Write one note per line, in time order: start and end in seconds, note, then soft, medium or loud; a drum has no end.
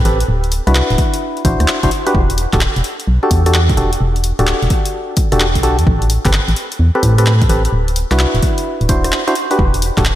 0.05 0.24 A1 medium
0.05 0.19 C4 medium
0.05 0.19 G4 medium
0.05 0.19 A4 medium
0.05 0.19 B4 medium
0.05 open hi-hat medium
0.20 closed hi-hat medium
0.29 0.60 D1 loud
0.44 closed hi-hat soft
0.52 open hi-hat loud
0.67 0.82 C2 loud
0.67 1.43 D4 medium
0.67 1.43 E4 medium
0.67 1.43 F#4 medium
0.67 1.43 B4 medium
0.67 cross-stick medium
0.67 closed hi-hat medium
0.75 clap loud
0.90 0.96 D1 medium
0.90 closed hi-hat soft
0.98 kick loud
0.98 open hi-hat medium
1.14 closed hi-hat medium
1.37 closed hi-hat soft
1.45 1.56 A1 medium
1.45 1.80 D4 medium
1.45 1.80 E4 medium
1.45 1.80 F#4 medium
1.45 1.80 C5 medium
1.45 kick loud
1.45 open hi-hat loud
1.60 1.66 D2 loud
1.60 cross-stick medium
1.60 closed hi-hat medium
1.68 clap loud
1.83 1.89 F#1 medium
1.83 1.90 D4 medium
1.83 1.90 E4 medium
1.83 1.90 F#4 medium
1.83 1.90 C5 loud
1.83 kick medium
1.83 closed hi-hat soft
1.91 open hi-hat medium
2.07 2.21 D4 medium
2.07 2.21 F#4 medium
2.07 2.21 G4 medium
2.07 2.21 B4 medium
2.07 closed hi-hat medium
2.15 2.46 E1 loud
2.15 kick loud
2.30 closed hi-hat medium
2.38 open hi-hat loud
2.53 2.68 D1 loud
2.53 2.60 D4 medium
2.53 2.60 F#4 medium
2.53 2.60 G4 medium
2.53 2.60 A4 medium
2.53 kick loud
2.53 cross-stick medium
2.53 clap medium
2.53 closed hi-hat medium
2.61 clap loud
2.76 2.82 E1 medium
2.76 closed hi-hat soft
2.84 open hi-hat medium
3.00 closed hi-hat medium
3.08 3.19 B1 medium
3.23 3.43 D4 medium
3.23 3.43 F#4 medium
3.23 3.42 G4 medium
3.23 3.43 A4 medium
3.31 3.74 E2 medium
3.31 kick medium
3.31 open hi-hat loud
3.46 3.60 D4 medium
3.46 3.60 F#4 medium
3.46 3.60 G4 medium
3.46 3.60 A4 medium
3.46 cross-stick medium
3.46 closed hi-hat medium
3.54 clap loud
3.69 kick loud
3.69 closed hi-hat medium
3.77 3.96 E1 medium
3.77 3.91 D4 medium
3.77 3.91 F#4 medium
3.77 3.91 G4 medium
3.77 3.91 A4 medium
3.77 open hi-hat medium
3.93 closed hi-hat medium
4.01 4.32 E1 loud
4.16 closed hi-hat medium
4.24 open hi-hat loud
4.39 4.54 D1 loud
4.39 5.29 D4 medium
4.39 5.29 F#4 medium
4.39 5.29 G4 medium
4.39 5.29 A4 medium
4.39 cross-stick medium
4.39 closed hi-hat medium
4.47 clap loud
4.62 4.68 E1 medium
4.62 closed hi-hat soft
4.70 kick loud
4.70 open hi-hat medium
4.86 closed hi-hat medium
5.17 kick loud
5.17 open hi-hat loud
5.32 5.57 E1 medium
5.32 5.46 D4 loud
5.32 5.46 F#4 medium
5.32 5.46 G4 medium
5.32 5.46 A4 loud
5.32 cross-stick medium
5.32 closed hi-hat medium
5.40 clap loud
5.55 5.80 B1 medium
5.55 kick medium
5.55 closed hi-hat medium
5.63 5.77 D4 loud
5.63 5.77 F#4 medium
5.63 5.77 G4 medium
5.63 5.77 A4 loud
5.63 open hi-hat medium
5.79 5.84 E2 loud
5.79 closed hi-hat medium
5.87 6.19 A1 loud
5.87 kick loud
6.02 closed hi-hat medium
6.10 open hi-hat loud
6.25 6.40 G1 loud
6.25 6.32 C4 medium
6.25 6.32 G4 medium
6.25 6.32 A4 medium
6.25 6.32 B4 medium
6.25 kick loud
6.25 cross-stick medium
6.25 clap medium
6.25 closed hi-hat medium
6.33 clap loud
6.48 6.54 A1 medium
6.48 closed hi-hat soft
6.56 open hi-hat medium
6.72 closed hi-hat medium
6.79 6.91 E2 medium
6.95 7.15 C4 medium
6.95 7.15 G4 medium
6.95 7.15 A4 medium
6.95 7.15 B4 medium
7.03 7.46 A2 loud
7.03 kick medium
7.03 open hi-hat loud
7.18 7.32 C4 medium
7.18 7.32 G4 medium
7.18 7.32 A4 medium
7.18 7.32 B4 medium
7.18 cross-stick medium
7.18 closed hi-hat medium
7.26 clap loud
7.42 kick medium
7.42 closed hi-hat medium
7.49 7.68 A1 medium
7.49 7.63 C4 medium
7.49 7.63 G4 medium
7.49 7.63 A4 medium
7.49 7.63 B4 medium
7.49 open hi-hat medium
7.65 closed hi-hat medium
7.73 8.04 D1 medium
7.88 closed hi-hat medium
7.96 open hi-hat loud
8.11 8.26 C2 loud
8.11 8.87 D4 medium
8.11 8.87 E4 medium
8.11 8.87 F#4 medium
8.11 8.87 B4 medium
8.11 cross-stick medium
8.11 clap medium
8.11 closed hi-hat medium
8.19 clap loud
8.35 8.40 D1 medium
8.35 closed hi-hat soft
8.43 kick loud
8.43 open hi-hat loud
8.58 closed hi-hat medium
8.81 9.12 D1 medium
8.81 closed hi-hat soft
8.89 9.24 D4 medium
8.89 9.24 E4 medium
8.89 9.24 F#4 medium
8.89 9.24 C5 medium
8.89 kick loud
8.89 open hi-hat loud
9.04 cross-stick medium
9.04 closed hi-hat medium
9.12 clap loud
9.28 9.35 D4 loud
9.28 9.35 E4 medium
9.28 9.35 F#4 medium
9.28 9.35 C5 loud
9.28 closed hi-hat medium
9.35 open hi-hat loud
9.51 9.65 D4 medium
9.51 9.65 F#4 medium
9.51 9.65 G4 medium
9.51 9.65 B4 medium
9.51 closed hi-hat medium
9.59 9.91 E1 loud
9.59 kick loud
9.74 closed hi-hat medium
9.82 open hi-hat loud
9.97 10.12 D1 loud
9.97 10.04 D4 medium
9.97 10.04 F#4 medium
9.97 10.04 G4 medium
9.97 10.04 A4 medium
9.97 kick loud
9.97 cross-stick medium
9.97 clap medium
9.97 closed hi-hat medium
10.05 clap loud